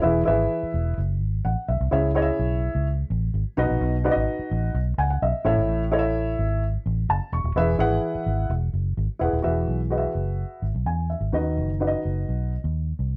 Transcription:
<<
  \new Staff \with { instrumentName = "Upright piano" } { \time 4/4 \key e \major \tempo 4 = 127 << { r2. fis''8 e''8~ | e''8 r2. r8 | r2 r8 <fis'' gis''>16 fis''16 <dis'' e''>4 | r2. a''8 cis'''8~ |
cis'''8 r2. r8 | r2. gis''8 e''8~ | e''8 r2. r8 | } \\ { <e' gis' b' e''>8 <e' gis' b' e''>4. r2 | <e' gis' cis'' e''>8 <e' gis' cis'' dis'' e''>4. r4. <dis' fis' b' dis''>8~ | <dis' fis' b' dis''>8 <dis' fis' b' d'' dis''>4. r4. <e' a' cis'' e''>8~ | <e' a' cis'' e''>8 <e' a' cis'' dis'' e''>4. r2 |
<e' gis' b' e''>8 <e' gis' b' fis''>4. r4. <e' gis' b' fis''>8 | <fis' gis' b' e''>8. r16 <fis' gis' b' dis'' e''>4. r4. | <dis' fis' b' dis''>8. r16 <dis' fis' b' d'' dis''>4. r4. | } >> }
  \new Staff \with { instrumentName = "Upright piano" } { \clef bass \time 4/4 \key e \major e4. r2 r8 | cis4. r2 b,8~ | b,4 r2 r8 a,8~ | a,4 r2. |
e4. r2 r8 | e4. r2 r8 | dis4. r2 r8 | }
  \new Staff \with { instrumentName = "Fingered electric bass" } { \clef bass \time 4/4 \key e \major e,,8 gis,,8 r8 e,,8 fis,,8 gis,,8 a,,16 r16 b,,16 c,16 | cis,4 b,,8. cis,8. a,,8 gis,,16 r16 b,,16 ais,,16 | b,,8. gis,,16 r8 a,,8 b,,8 cis,8 b,,16 r16 a,,16 gis,,16 | a,,4. gis,,4 a,,8 fis,,16 r16 e,,16 dis,,16 |
e,,8 gis,,8 r8 gis,,8 e,,8 fis,,8 gis,,16 r16 e,,16 dis,,16 | e,,8 b,,4 fis,,8. r16 gis,,16 b,,16 e,8. gis,,16 | dis,8 fis,,4 fis,,8 b,,8. dis,8. c,8 | }
>>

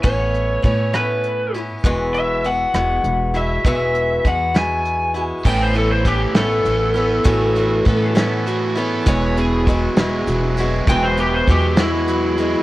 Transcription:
<<
  \new Staff \with { instrumentName = "Lead electric guitar" } { \time 6/8 \key a \major \tempo 4. = 66 cis''4 cis''8 b'4 r8 | r8 e''8 fis''4. e''8 | e''4 fis''8 gis''4 r8 | g''16 c''16 a'16 c''16 g'8 a'4.~ |
a'4. r4. | r2. | g''16 c''16 g'16 c''16 g'8 e'4. | }
  \new Staff \with { instrumentName = "Electric slide guitar" } { \time 6/8 \key a \major r2. | r2. | r2. | r2. |
fis'4 a'4 fis'8 a'8 | cis''8 gis'8 r2 | r2. | }
  \new Staff \with { instrumentName = "Steel-string acoustic guitar" } { \time 6/8 \key a \major <a, a b cis' e'>4 <a b cis' e'>8 <a, a b cis' e'>4 <b cis' e'>8 | <e, e gis b e' fis'>4 <gis b e' fis'>8 <e, e gis b e' fis'>4 <gis b e' fis'>8 | <e, e gis b e' fis'>4 <gis b e' fis'>8 <e, e gis b e' fis'>4 <gis b e' fis'>8 | <a, a b cis' e'>4 <a b cis' e'>8 <a, a b cis' e'>4 <b cis' e'>8 |
<a, a b cis' e'>4 <a b cis' e'>8 <a, a b cis' e'>4 <b cis' e'>8 | <e, e gis b e' fis'>4 <gis b e' fis'>8 <e, e gis b e' fis'>4 <gis b e' fis'>8 | <e, e gis b e' fis'>4 <gis b e' fis'>8 <e, e gis b e' fis'>4 <gis b e' fis'>8 | }
  \new Staff \with { instrumentName = "Overdriven electric guitar" } { \clef bass \time 6/8 \key a \major r2. | r2. | r2. | a,8 e8 e8 b8 e8 b8 |
a,8 e8 e8 b8 e8 b8 | e,8 b,8 fis8 gis8 fis8 gis8 | e,8 b,8 fis8 gis8 fis8 gis8 | }
  \new Staff \with { instrumentName = "Upright bass" } { \clef bass \time 6/8 \key a \major a,,4 a,2 | e,,4. e,,8 e,,4 | e,,4 e,2 | a,,4. a,,8 a,,4 |
a,,4 a,2 | e,,4. e,,8 e,,4 | e,,4 e,2 | }
  \new DrumStaff \with { instrumentName = "Drums" } \drummode { \time 6/8 <hh bd>8 hh8 <hh bd>8 <hh ss>8 hh8 hh8 | <hh bd>8 hh8 hh8 <hh ss>8 hh8 hh8 | <hh bd>8 hh8 <hh bd>8 <hh sn>8 hh8 hh8 | <cymc bd>8 hh8 <hh bd>8 <hh sn>8 hh8 hh8 |
<hh bd>8 hh8 <hh bd>8 <hh sn>8 hh8 hh8 | <hh bd>8 hh8 <hh bd>8 <hh sn>8 hh8 hh8 | <hh bd>8 hh8 <hh bd>8 <hh sn>8 hh8 hh8 | }
>>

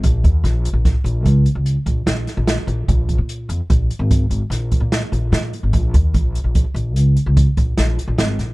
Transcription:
<<
  \new Staff \with { instrumentName = "Upright bass" } { \clef bass \time 7/4 \key bes \minor \tempo 4 = 147 bes,,8 ees,8 bes,,8. bes,,8 r16 bes,,8 des,8 r16 des,8 r16 bes,,8 bes,,8 r16 bes,,8 r16 bes,,8 | bes,,8. bes,8. f,16 r16 bes,,8 r16 aes,,8. aes,,16 r16 bes,,8. bes,8 r16 bes,,8 bes,8 r16 aes,,16 | bes,,8 ees,8 bes,,8. bes,,8 r16 bes,,8 des,8 r16 des,8 r16 bes,,8 bes,,8 r16 bes,,16 aes,,8 bes,,8 | }
  \new DrumStaff \with { instrumentName = "Drums" } \drummode { \time 7/4 <hh bd>8 <hh bd>8 <hh sn>8 hh8 <hh bd sn>8 hh8 <hh bd>8 hh8 hh8 <hh bd>8 <hh sn>8 <hh sn>8 <hh sn>8 hh8 | <hh bd>8 <hh bd>8 hh8 hh8 <hh bd>8 hh8 <hh bd>8 hh8 <hh sn>8 <hh bd>8 <hh sn>8 hh8 <hh sn>8 hh8 | <hh bd>8 <hh bd>8 <hh bd>8 hh8 <hh bd>8 hh8 hh8 hh8 <hh bd>8 <hh bd>8 <hh sn>8 hh8 <hh sn>8 <hh sn>8 | }
>>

